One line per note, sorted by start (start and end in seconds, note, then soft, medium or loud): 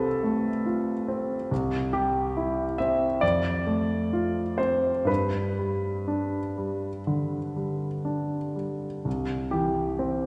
0.00 0.49 C3 soft
0.00 0.23 A3 soft
0.00 1.08 C4 soft
0.00 0.66 F4 soft
0.00 1.50 A4 medium
0.00 1.53 B4 medium
0.23 0.91 A3 soft
0.66 1.34 F4 soft
1.08 1.51 C4 soft
1.51 3.19 C2 soft
1.93 2.63 G3 soft
1.93 2.79 G4 medium
2.37 3.05 E4 soft
2.78 3.23 C4 soft
2.78 3.22 E5 medium
3.21 5.05 F2 soft
3.21 4.59 D5 medium
3.67 4.40 A3 soft
4.13 4.89 F4 soft
4.58 5.09 C4 soft
4.58 5.08 C5 soft
5.05 7.01 G2 soft
5.05 8.55 B4 soft
5.59 6.38 G3 soft
6.08 6.87 D4 soft
6.58 7.37 G3 soft
7.07 7.86 D3 soft
7.56 8.36 G3 soft
8.05 8.86 D4 soft
8.56 9.06 G3 soft
9.05 10.26 C2 soft
9.51 10.26 E3 soft
9.51 10.26 G4 soft
9.99 10.26 C4 soft